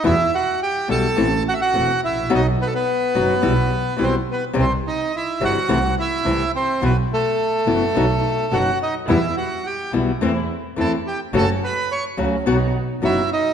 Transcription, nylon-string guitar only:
X:1
M:4/4
L:1/8
Q:1/4=106
K:Em
V:1 name="Nylon-string guitar"
[B,,E,G,B,E] z2 [B,,E,G,B,E] [E,A,CE] z [E,A,CE] z | [B,,F,B,^DF] z2 [B,,F,B,DF] [B,,E,G,B,E] z [B,,E,G,B,E] z | [C,E,G,CE] z2 [C,E,G,CE] [C,E,A,CE] z [C,E,A,CE] z | [B,,E,B,EF] z2 [B,,E,B,EF] [B,,F,B,^DF] z [B,,F,B,DF] z |
[B,,E,G,B,E] z2 [B,,E,G,B,E] [E,A,CE] z [E,A,CE] z | [^C,F,A,^CF] z2 [C,F,A,CF] [B,,F,B,^DF] z [B,,F,B,DF] z |]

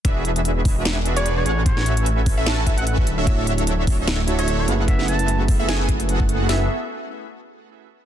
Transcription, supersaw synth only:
X:1
M:4/4
L:1/16
Q:"Swing 16ths" 1/4=149
K:F#m
V:1 name="Supersaw synth"
[DFGBe]2 [DFGBe]4- [DFGBe] [DFGBe]4 [DFGBd]3 [CFABf]2- | [CFABf]2 [CFABe]4- [CFABe] [CFABe] [CFABa] z [CFABe] [CFABe]3 z [DFAce] | [DFAce]2 [DFAce]4- [DFAce] [DFAce]4 [DFAce]3 [B,FGAf]2- | [B,FGAf]2 [B,FGAe]4- [B,FGAe] [B,FGAe] [B,FGAg] z3 [B,FGAf]4 |
[B,FGAe]2 z12 z2 |]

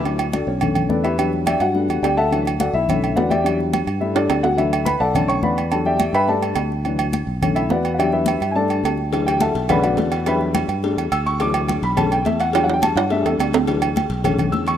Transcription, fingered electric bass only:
X:1
M:4/4
L:1/8
Q:1/4=211
K:D
V:1 name="Fingered electric bass" clef=bass
D,,3 B,,,3 E,,2- | E,,3 G,,2 E,, D,,2- | D,,3 B,,,3 E,,2- | E,,3 G,,3 D,,2- |
D,,3 B,,,3 E,,2- | E,,3 G,,3 D,,2- | D,,3 B,,,3 E,,2- | E,,3 G,,3 D,,2- |
D,,3 B,,,3 E,,2- | E,,3 G,,2 E,, D,,2- | D,,3 B,,,3 E,,2- | E,,3 G,,2 E,, D,,2- |
D,,3 B,,,3 E,,2 |]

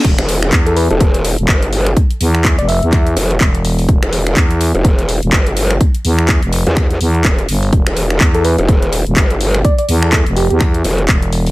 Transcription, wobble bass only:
X:1
M:4/4
L:1/16
Q:"Swing 16ths" 1/4=125
K:Ephr
V:1 name="Wobble bass" clef=bass
z E,,,3 z3 E,,,4 z G,,,4 | z8 z2 F,,,2 z4 | z E,,,3 z3 E,,,4 z G,,,4 | z6 z E,,3 z2 E,,,2 z2 |
z E,,,3 z3 E,,,4 z G,,,4 | z8 z2 F,,,2 z4 |]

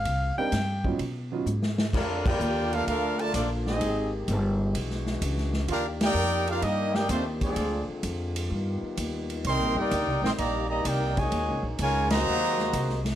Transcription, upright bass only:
X:1
M:4/4
L:1/8
Q:"Swing" 1/4=128
K:Bb
V:1 name="Upright bass" clef=bass
C,, z G,,2 =B,,2 _A,,2 | F,,2 E,,2 D,,2 B,,,2 | _A,,,2 G,,,2 =B,,,2 _D,,2 | E,,2 F,,2 G,,2 E,,2 |
D,, z F,,2 G,, z ^D,,2 | (3C,, B,,, G,,, (3D,, C,, B,,, B,,,2 C,,2 | (3E,, _D,, B,,, D,,2 E,,2 C,,2 |]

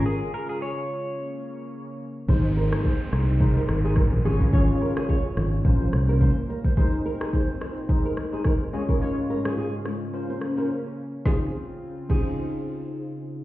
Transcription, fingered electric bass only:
X:1
M:4/4
L:1/16
Q:"Swing 16ths" 1/4=107
K:Db
V:1 name="Fingered electric bass" clef=bass
z16 | A,,,4 z2 C,,4 A,,,3 B,,, A,,,2- | A,,,2 z4 A,,,2 B,,,2 C,,3 z3 | z16 |
z16 | z16 |]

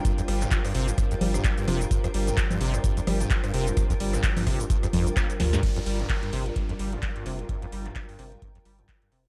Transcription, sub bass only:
X:1
M:4/4
L:1/8
Q:"Swing 16ths" 1/4=129
K:Gm
V:1 name="Sub bass" clef=bass
z G,,, z G,,, G,,, G,,, z F,,, | z G,,, z G,,, G,,, G,,, z F,,, | z G,,, z G,,, G,,, G,,, z D,, | z G,,, z G,,, G,,, G,,, z F,,, |
z G,,, z G,,, G,,, G,,, z F,,, |]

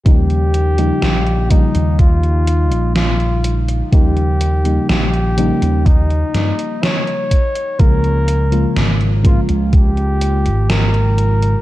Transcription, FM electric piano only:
X:1
M:4/4
L:1/16
Q:1/4=62
K:Ebmix
V:1 name="FM electric piano" clef=bass
[D,F,G,B,E]3 [D,F,G,B,E]3 [D,F,G,B,E]8- [D,F,G,B,E]2 | [D,F,G,B,E]3 [D,F,G,B,E]3 [D,F,G,B,E]8 z2 | [D,F,A,B,F]3 [D,F,A,B,F]3 [D,F,A,B,F]8- [D,F,A,B,F]2 |]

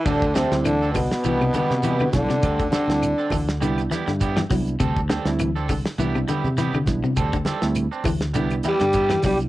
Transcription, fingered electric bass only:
X:1
M:4/4
L:1/16
Q:"Swing 16ths" 1/4=101
K:Clyd
V:1 name="Fingered electric bass" clef=bass
D,,3 D,,3 C,, z C,,2 z C,3 B,,, z | D,,2 z D,,2 z D,,2 C,,2 z G,,3 C,,2 | D,,3 D,,3 C,, z C,,2 z C,3 B,,, z | D,,2 z D,,2 z D,,2 C,,2 z G,,3 C,,2 |]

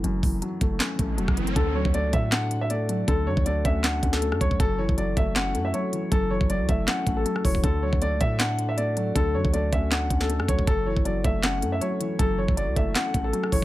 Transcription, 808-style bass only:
X:1
M:4/4
L:1/16
Q:1/4=158
K:Dlyd
V:1 name="808-style bass" clef=bass
F,,,2 F,,,2 z2 F,,,2 z2 A,,,2 E,,, F,,,3 | D,,3 D,,2 C,, A,,8- A,,2 | D,,2 F,, D,,3 D,,4 D,,3 F,, D,,2 | F,,,3 F,,,3 F,,,4 F,,2 z4 |
F,,,3 F,,,2 C,, F,,,2 z2 A,,,2 z2 E,,,2 | D,,3 D,,2 C,, A,,8- A,,2 | D,,2 F,, D,,3 D,,4 D,,3 F,, D,,2 | F,,,3 F,,,3 F,,,4 F,,2 z4 |
F,,,3 F,,,2 C,, F,,,2 z2 A,,,2 z2 E,,,2 |]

